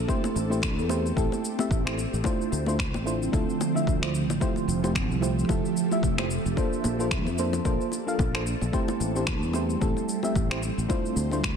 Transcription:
Already playing: A4
0.08 A3 C4 E4 G4 C5, kick, shaker
0.24 high bongo, shaker
0.36 A1, shaker
0.50 A3 C4 E4 G4 C5, shaker
0.62 finger snap, kick, high bongo, shaker
0.79 E2, shaker
0.89 A3 C4 E4 G4 C5, high bongo, shaker
1.06 shaker
1.16 A1 A3 C4 E4 G4 A4, kick, shaker
1.32 high bongo, shaker
1.45 shaker
1.59 A3 C4 E4 G4 E5, high bongo, shaker
1.71 A1, kick, shaker
1.85 A3 C4 E4 G4 C5, finger snap, shaker
1.97 high bongo, shaker
2.13 A1, shaker
2.24 D3 F3 A3 C4 D4 E4 F4 C5, kick, high bongo, shaker
2.41 shaker
2.52 D2, shaker
2.66 A3 D4 E4 F4 C5, high bongo, shaker
2.79 finger snap, kick, shaker
2.94 A1, high bongo, shaker
3.05 A3 D4 E4 F4 C5, shaker
3.23 shaker
3.32 D2 A3 D4 E4 F4 A4, kick, high bongo, shaker
3.50 shaker
3.61 high bongo, shaker
3.74 A3 D4 E4 F4 E5, shaker
3.87 D2, kick, shaker
4.01 A3 D4 E4 F4 C5, finger snap, high bongo, shaker
4.15 shaker
4.30 A1, high bongo, shaker
4.40 F3 A3 E4 F4 G4 A4 C5 E5, kick, shaker
4.56 high bongo, shaker
4.68 F1, shaker
4.83 A3 E4 F4 G4 C5, high bongo, shaker
4.95 finger snap, kick, shaker
5.10 C2, shaker
5.21 A3 E4 F4 G4 C5, high bongo, shaker
5.39 shaker
5.49 F1 A3 E4 F4 G4 A4, kick, high bongo, shaker
5.65 shaker
5.77 shaker
5.91 A3 E4 F4 G4 E5, high bongo, shaker
6.03 F1, kick, shaker
6.17 A3 E4 F4 G4 C5, finger snap, high bongo, shaker
6.31 shaker
6.46 F1, shaker
6.56 A#3 D4 F4 A4 C5, kick, high bongo, shaker
6.73 shaker
6.84 A#1, high bongo, shaker
6.99 A#3 D4 F4 A4 C5, shaker
7.11 finger snap, kick, shaker
7.26 F2, high bongo, shaker
7.38 A#3 D4 F4 A4 C5, shaker
7.53 high bongo, shaker
7.65 A#1 A#3 D4 F4 A4 C5, kick, shaker
7.81 shaker
7.92 high bongo, shaker
8.07 A#3 D4 F4 A4 F5, shaker
8.19 A#1, kick, high bongo, shaker
8.33 A#3 D4 F4 A4 C5, finger snap, shaker
8.47 shaker
8.61 A#1, high bongo, shaker
8.72 G3 A3 C4 E4 G4 C5, kick, shaker
8.88 high bongo, shaker
9.00 A1, shaker
9.15 A3 C4 E4 G4 C5, shaker
9.27 finger snap, kick, high bongo, shaker
9.42 E2, shaker
9.53 A3 C4 E4 G4 C5, high bongo, shaker
9.70 shaker
9.80 A1 A3 C4 E4 G4 A4, kick, shaker
9.97 high bongo, shaker
10.09 shaker
10.23 A3 C4 E4 G4 E5, high bongo, shaker
10.36 A1, kick, shaker
10.50 A3 C4 E4 G4 C5, finger snap, shaker
10.63 high bongo, shaker
10.78 A1, shaker
10.88 D3 F3 A3 D4 E4 F4 C5, kick, high bongo, shaker
11.06 shaker
11.16 D2, shaker
11.31 A3 D4 E4 F4 C5, high bongo, shaker
11.44 finger snap, kick, shaker

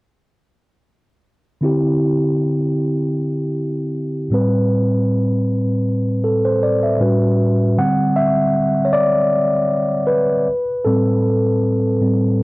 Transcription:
1.61 D3 C4 E4 G4
4.30 A2 G3 C4 B4
6.24 A4
6.45 C5
6.63 D5
6.83 E5
7.00 A2 G3 C#4 F#4 B4
7.77 D3 G3 C4 F#5
8.16 E5
8.85 C#5
8.93 D5
10.07 B4
10.84 A2 G3 C4 A4
12.01 A2 G3 C4

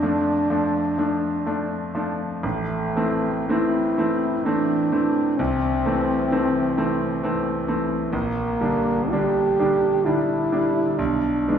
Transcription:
Already playing: F2 D4
0.03 F3 A3 D4
0.50 F3 A3 D4
0.98 F3 A3 D4
1.46 F3 A3 D4
1.95 F3 A3 D4
2.43 A1 A3
2.96 E3 A3 C4
3.49 E3 A3 C4 E4
3.98 E3 A3 C4
4.45 E3 A3 C4 D4
4.92 E3 A3 C4
5.38 C2 C4
5.86 E3 A3 C4
6.31 E3 A3 C4
6.77 E3 A3 C4
7.23 E3 A3 C4
7.68 E3 A3 C4
8.11 A#1 A#3
8.61 D3 G3 D4
9.12 D3 G3 D4 G4
9.60 D3 G3 D4
10.05 D3 G3 D4 E4
10.52 D3 G3 D4
10.97 B1 D4
11.48 E3 G#3 D4

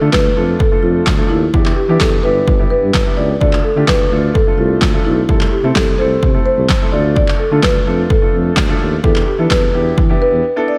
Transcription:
0.01 D3 A3 D4 F4 A4
0.12 D2 B4, kick, snare, clap
0.36 F2 A3 D4 F4 A4
0.59 A4, kick
0.72 A3 D4 F4 A4
0.82 F2 F4
1.06 D2, kick, snare, clap
1.18 A3 D4 F4 A4
1.29 D#2 E4
1.54 E2 B3 D4 E4 G4, kick
1.66 clap
1.76 G4
1.89 E3 B3 D4 E4 G4
2.00 E2 A4, kick, snare, clap
2.23 G1 B3 D4 E4 G4 B4
2.48 G1, kick
2.59 B3 D4 E4 G4
2.70 G2 B4
2.83 G2
2.94 G1, kick, snare, clap
3.06 B3 D4 E4 G4
3.17 C#2 D5
3.41 D2 A3 D4 F4 A4 D5, kick
3.53 clap
3.64 A4
3.76 D3 A3 D4 F4 G4
3.88 D2 B4, kick, snare, clap
4.12 D2 A3 D4 F4 A4
4.34 A4, kick
4.47 A3 D4 F4 A4
4.58 C2 F4
4.81 D2, kick, snare, clap
4.94 A3 D4 F4 A4
5.05 B1 E4
5.29 C2 A3 C4 E4 A4, kick
5.41 clap
5.52 G4
5.64 C3 A3 C4 E4 A4
5.75 C2 A4, kick, snare, clap
5.98 C2 A3 C4 E4 A4 C5
6.23 C3, kick
6.34 A3 C4 E4 A4
6.46 C5
6.58 C2
6.69 kick, snare, clap
6.81 A3 C4 E4 A4
6.92 D2 A3 D4 F4 A4 D5
7.16 D5, kick
7.28 clap
7.39 A4
7.51 D3 A3 D4 F4 A4
7.63 D2 B4, kick, snare, clap
7.86 F2 A3 D4 F4 A4
8.10 A4, kick
8.22 A3 D4 F4 A4
8.34 F2
8.56 D2, kick, snare, clap
8.69 A3 D4 F4 A4
8.80 D#2
9.04 E2 B3 D4 E4 G4 A4, kick
9.16 clap
9.27 G4
9.39 E3 B3 D4 E4 A4
9.50 E2 B4, kick, snare, clap
9.74 E2 B3 D4 E4 G4
9.98 E3, kick
10.10 B3 D4 E4 G4
10.22 B4
10.33 E2
10.56 B3 D4 E4 A4
10.68 D5

